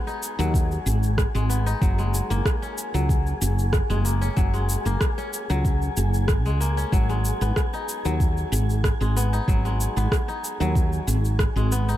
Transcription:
Already playing: kora F#3 G#3 B3, synth texture G#4 G#5
0.07 kora D#4, cabasa
0.23 cabasa
0.39 fretless electric bass D#2, kora F#3, cabasa
0.54 kick, cabasa
0.72 cabasa
0.86 fretless electric bass G#1, cabasa
1.03 cabasa
1.18 kick, cross-stick, cabasa
1.35 fretless electric bass G#1, kora G#3, cabasa
1.50 kora B3, cabasa
1.66 kora D#4, cabasa
1.81 fretless electric bass F#1, kora F#3, kick, cabasa
1.98 kora G#3, cabasa
2.14 cabasa
2.30 fretless electric bass F#1, kora A#3, cabasa
2.45 kick, cross-stick, cabasa
2.62 kora C#4, cabasa
2.78 cabasa
2.94 fretless electric bass C#2, kora F#3, cabasa
3.09 kick, cabasa
3.27 cabasa
3.41 fretless electric bass F#1, cabasa
3.59 cabasa
3.73 kick, cross-stick, cabasa
3.90 fretless electric bass F#1, kora G#3, cabasa
4.05 kora A#3, cabasa
4.21 kora C#4, cabasa
4.37 fretless electric bass F#1, kora F#3, kick, cabasa
4.54 kora G#3, cabasa
4.69 cabasa
4.85 fretless electric bass F#1, kora A#3, cabasa
5.01 kick, cross-stick, cabasa
5.18 kora C#4, cabasa
5.33 cabasa
5.50 fretless electric bass C#2, kora F#3, cabasa
5.65 kick, cabasa
5.82 cabasa
5.97 fretless electric bass F#1, cabasa
6.14 cabasa
6.28 kick, cross-stick, cabasa
6.45 fretless electric bass C#2, kora G#3, cabasa
6.60 kora A#3, cabasa
6.77 kora C#4, cabasa
6.92 fretless electric bass G#1, kora F#3, kick, cabasa
7.09 kora G#3, cabasa
7.25 cabasa
7.41 fretless electric bass G#1, kora B3, cabasa
7.56 kick, cross-stick, cabasa
7.74 kora D#4, cabasa
7.89 cabasa
8.05 fretless electric bass D#2, kora F#3, cabasa
8.20 kick, cabasa
8.37 cabasa
8.52 fretless electric bass G#1, cabasa
8.70 cabasa
8.84 kick, cross-stick, cabasa
9.00 fretless electric bass G#1, kora G#3, cabasa
9.17 kora B3, cabasa
9.33 kora D#4, cabasa
9.48 fretless electric bass G#1, kora F#3, kick, cabasa
9.65 kora G#3, cabasa
9.81 cabasa
9.96 fretless electric bass G#1, kora B3, cabasa
10.12 kick, cross-stick, cabasa
10.28 kora D#4, cabasa
10.44 cabasa
10.60 fretless electric bass D#2, kora F#3, cabasa
10.75 kick, cabasa
10.93 cabasa
11.07 fretless electric bass G#1, cabasa
11.25 cabasa
11.39 kick, cross-stick, cabasa
11.56 fretless electric bass G#1, kora G#3, cabasa
11.72 kora B3, cabasa
11.89 kora D#4, cabasa

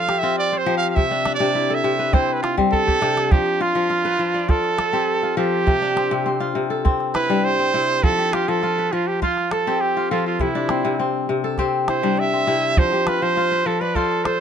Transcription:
Already playing: kora F3 F4 A4 D5 E5
0.00 trumpet F5
0.08 kora G4, calabash click
0.19 trumpet E5
0.23 kora C4 F4
0.38 trumpet D5
0.52 kora C5
0.58 trumpet C5
0.66 kora F3 G4
0.78 trumpet F5
0.90 trumpet F5
0.96 kora C3, trumpet E5, calabash thump
1.11 kora D4, calabash click
1.25 kora D4, calabash click
1.34 trumpet D5
1.40 kora C3 D4, calabash click
1.55 kora E4
1.70 kora A4
1.75 trumpet E5
1.84 kora C3, calabash click
1.99 kora B4
2.13 kora C4 E4, trumpet C5, calabash thump, calabash click
2.29 calabash click
2.33 trumpet B4
2.42 trumpet F4, calabash click
2.57 kora G3 C4, calabash thump
2.72 trumpet A4, calabash thump
2.87 kora G4, calabash thump
3.02 kora C3 D4, calabash click
3.17 calabash click
3.31 kora F3, trumpet G4, calabash thump
3.46 calabash click
3.60 kora F4, trumpet F4
3.75 kora F3
3.90 kora F4, calabash click
4.05 kora B4
4.19 kora F3
4.34 kora D5
4.49 kora F4, trumpet A4, calabash thump
4.64 calabash click
4.78 kora A4, calabash click
4.93 kora C4 G4
5.23 kora F4
5.37 kora F3 A4, trumpet G4
5.67 kora C3, calabash thump
5.82 kora D4, calabash click
5.96 kora C4, calabash click
6.11 kora C3
6.26 kora C4, calabash click
6.40 kora F4
6.55 kora C3
6.70 kora A4
6.85 kora C4, calabash thump
7.00 calabash click
7.15 kora E4, trumpet B4, calabash click
7.30 kora G3 D4
7.45 trumpet C5
7.59 kora C4
7.74 kora C3 E4
8.03 kora F3, trumpet A4, calabash thump
8.18 kora G4, calabash click
8.33 kora F4, trumpet G4, calabash click
8.48 kora F3, trumpet A4
8.62 kora F4, calabash click
8.78 kora B4
8.93 kora F3, trumpet F4
9.07 trumpet G4
9.22 trumpet F4, kora F4 C5, calabash thump
9.37 calabash click
9.51 trumpet A4, kora A4, calabash click
9.67 kora C4 G4
9.81 trumpet G4
9.97 kora F4
10.11 kora F3 A4, trumpet F4
10.26 trumpet F4
10.40 kora C3, trumpet E4, calabash thump
10.55 kora D4
10.69 kora C4, calabash click
10.85 kora C3
10.99 kora C4
11.29 kora C3
11.44 kora A4
11.58 kora C4 G4, calabash thump, calabash click
11.88 kora E4, trumpet C5, calabash click
12.03 kora G3 D4
12.17 trumpet E5, calabash click
12.33 kora C4
12.47 kora C3 E4, calabash click
12.77 kora F3, trumpet C5, calabash thump
12.92 kora G4, calabash click
13.07 kora F4, trumpet B4, calabash click
13.22 kora F3, trumpet C5
13.37 kora F4, calabash click
13.52 kora B4
13.66 kora F3, trumpet A4
13.81 trumpet B4, kora D5
13.95 kora F4 C5, trumpet A4, calabash thump
14.11 calabash click
14.25 kora A4, trumpet C5, calabash click

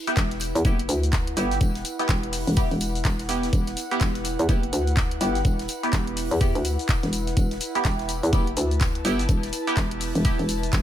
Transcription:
Already playing: analog synth pad E4 B4
0.07 synth stab B3 E4 G4, closed hi-hat, shaker
0.17 fm bass E1, kick, snare, clap, closed hi-hat, tambourine, shaker
0.30 snare, closed hi-hat
0.40 open hi-hat, tambourine, shaker
0.55 fm bass E2, closed hi-hat, shaker
0.62 fm bass F#1, synth stab B3 E4 G4, analog synth pad F#5, kick, closed hi-hat, tambourine, shaker
0.79 closed hi-hat
0.89 fm bass D2, open hi-hat, tambourine, shaker
1.03 closed hi-hat, shaker
1.12 kick, snare, clap, closed hi-hat, tambourine, shaker
1.27 closed hi-hat
1.37 fm bass G1, synth stab B3 E4 G4, open hi-hat, tambourine, shaker
1.51 snare, closed hi-hat, shaker
1.61 fm bass E1, kick, closed hi-hat, tambourine, shaker
1.75 snare, closed hi-hat
1.85 open hi-hat, tambourine, shaker
1.99 synth stab B3 E4 G4, closed hi-hat, shaker
2.09 fm bass E1, kick, snare, clap, closed hi-hat, tambourine, shaker
2.23 closed hi-hat
2.33 open hi-hat, shaker
2.47 fm bass E1, closed hi-hat, shaker
2.56 synth stab B3 E4 G4, kick, closed hi-hat, tambourine, shaker
2.71 fm bass E1, open hi-hat
2.80 open hi-hat, tambourine, shaker
2.95 closed hi-hat, shaker
3.05 fm bass E1, kick, snare, clap, closed hi-hat, tambourine, shaker
3.19 snare, closed hi-hat
3.29 synth stab B3 E4 G4, open hi-hat, tambourine, shaker
3.43 snare, closed hi-hat, shaker
3.53 fm bass E1, kick, closed hi-hat, tambourine, shaker
3.67 snare, closed hi-hat
3.77 open hi-hat, tambourine, shaker
3.91 synth stab B3 E4 G4, closed hi-hat, shaker
4.01 fm bass E1, kick, snare, clap, closed hi-hat, tambourine, shaker
4.15 snare, closed hi-hat
4.25 open hi-hat, tambourine, shaker
4.39 fm bass E2, closed hi-hat, shaker
4.49 fm bass F#1, synth stab B3 E4 G4, kick, closed hi-hat, tambourine, shaker
4.63 closed hi-hat
4.73 fm bass D2, open hi-hat, tambourine, shaker
4.87 closed hi-hat, shaker
4.97 kick, snare, clap, closed hi-hat, tambourine, shaker
5.11 closed hi-hat
5.21 fm bass G1, synth stab B3 E4 G4, open hi-hat, tambourine, shaker
5.35 snare, closed hi-hat, shaker
5.45 fm bass E1, kick, closed hi-hat, tambourine, shaker
5.59 snare, closed hi-hat
5.68 open hi-hat, tambourine, shaker
5.83 synth stab B3 E4 G4, closed hi-hat, shaker
5.93 fm bass E1, kick, snare, clap, closed hi-hat, tambourine, shaker
6.07 closed hi-hat
6.17 open hi-hat, shaker
6.31 fm bass E2, closed hi-hat, shaker
6.41 synth stab B3 E4 G4, kick, closed hi-hat, tambourine, shaker
6.55 fm bass D2, open hi-hat
6.65 open hi-hat, tambourine, shaker
6.79 closed hi-hat, shaker
6.89 kick, snare, clap, closed hi-hat, tambourine, shaker
7.03 fm bass E1, snare, closed hi-hat
7.13 open hi-hat, tambourine, shaker
7.27 snare, closed hi-hat, shaker
7.37 fm bass E1, kick, closed hi-hat, tambourine, shaker
7.51 snare, closed hi-hat
7.60 open hi-hat, tambourine, shaker
7.75 synth stab B3 E4 G4, closed hi-hat, shaker
7.85 fm bass E1, kick, snare, clap, closed hi-hat, tambourine, shaker
7.99 snare, closed hi-hat
8.09 open hi-hat, tambourine, shaker
8.23 fm bass E2, closed hi-hat, shaker
8.30 fm bass F#1, synth stab B3 E4 G4, analog synth pad A5, kick, closed hi-hat, tambourine, shaker
8.47 closed hi-hat
8.57 fm bass D2, open hi-hat, tambourine, shaker
8.71 closed hi-hat, shaker
8.81 kick, snare, clap, closed hi-hat, tambourine, shaker
8.95 closed hi-hat
9.05 fm bass G1, synth stab B3 E4 G4, open hi-hat, tambourine, shaker
9.19 snare, closed hi-hat, shaker
9.29 fm bass E1, kick, closed hi-hat, tambourine, shaker
9.43 snare, closed hi-hat
9.53 open hi-hat, tambourine, shaker
9.67 synth stab B3 E4 G4, closed hi-hat, shaker
9.77 fm bass E1, kick, snare, clap, closed hi-hat, tambourine, shaker
9.91 closed hi-hat
10.01 open hi-hat, shaker
10.15 fm bass E1, closed hi-hat, shaker
10.25 synth stab B3 E4 G4, kick, closed hi-hat, tambourine, shaker
10.39 fm bass E1, open hi-hat
10.49 open hi-hat, tambourine, shaker
10.63 closed hi-hat, shaker
10.73 fm bass E1, kick, snare, clap, closed hi-hat, tambourine, shaker

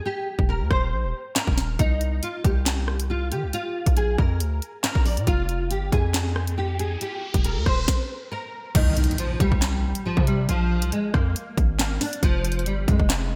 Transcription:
0.05 nylon-string guitar G4
0.39 808-style bass D#1, kick
0.49 nylon-string guitar A#4
0.60 808-style bass D#2
0.71 808-style bass D#1, nylon-string guitar C5, kick, cross-stick
0.92 808-style bass A#1
1.04 808-style bass D#1
1.36 nylon-string guitar A#4, snare, clap
1.47 808-style bass D#1, kick
1.58 snare
1.79 808-style bass C2, nylon-string guitar D#4, kick, closed hi-hat
2.01 closed hi-hat
2.23 nylon-string guitar F4, closed hi-hat
2.44 808-style bass C2, nylon-string guitar G4, kick, closed hi-hat
2.66 snare, clap, closed hi-hat
2.88 cross-stick
3.00 closed hi-hat
3.10 nylon-string guitar F4
3.31 808-style bass D#3, nylon-string guitar G4, closed hi-hat
3.43 808-style bass C2
3.53 nylon-string guitar F4, closed hi-hat
3.86 808-style bass A#1, kick, closed hi-hat
3.97 nylon-string guitar G#4, closed hi-hat
4.18 808-style bass F2, nylon-string guitar A#4, kick
4.40 808-style bass D2, closed hi-hat
4.62 closed hi-hat
4.84 nylon-string guitar A#4, snare, clap
4.95 808-style bass A#1, kick
5.05 nylon-string guitar D5, open hi-hat
5.17 808-style bass A#2, closed hi-hat
5.27 808-style bass F1, nylon-string guitar F4, kick, closed hi-hat, riser
5.49 closed hi-hat
5.71 808-style bass G1, nylon-string guitar G4, closed hi-hat
5.92 808-style bass F2, nylon-string guitar G#4, kick, closed hi-hat
6.14 snare, clap, closed hi-hat
6.36 cross-stick
6.47 closed hi-hat
6.58 nylon-string guitar G4
6.79 nylon-string guitar G#4, closed hi-hat
7.01 nylon-string guitar G4, closed hi-hat
7.34 808-style bass D#1, kick, closed hi-hat
7.44 nylon-string guitar A#4, closed hi-hat
7.56 808-style bass D#2
7.66 808-style bass D#1, nylon-string guitar C5, kick, cross-stick
7.88 kick, snare
8.31 nylon-string guitar A#4
8.75 808-style bass C2, nylon-string guitar D#3, kick, closed hi-hat, crash, impact
8.97 closed hi-hat
9.04 closed hi-hat
9.11 closed hi-hat
9.18 nylon-string guitar F3, closed hi-hat
9.40 808-style bass C2, nylon-string guitar G3, kick, closed hi-hat
9.52 808-style bass C2, kick
9.62 snare, clap, closed hi-hat
9.95 closed hi-hat
10.05 nylon-string guitar F3
10.17 808-style bass C3, kick
10.27 nylon-string guitar G3, closed hi-hat
10.49 808-style bass A#1, nylon-string guitar F3, closed hi-hat
10.82 808-style bass C2, closed hi-hat
10.92 nylon-string guitar G#3, closed hi-hat
11.14 808-style bass F2, nylon-string guitar A#3, kick, cross-stick
11.36 closed hi-hat
11.57 808-style bass G#1, kick, closed hi-hat
11.79 nylon-string guitar A#3, snare, clap
12.01 nylon-string guitar D4, snare, open hi-hat
12.13 closed hi-hat
12.23 808-style bass F1, nylon-string guitar F3, kick, closed hi-hat
12.45 closed hi-hat
12.52 closed hi-hat
12.59 closed hi-hat
12.66 808-style bass G1, nylon-string guitar G3, closed hi-hat
12.88 808-style bass F2, nylon-string guitar G#3, kick, closed hi-hat
12.99 808-style bass F1, kick
13.10 snare, clap, closed hi-hat

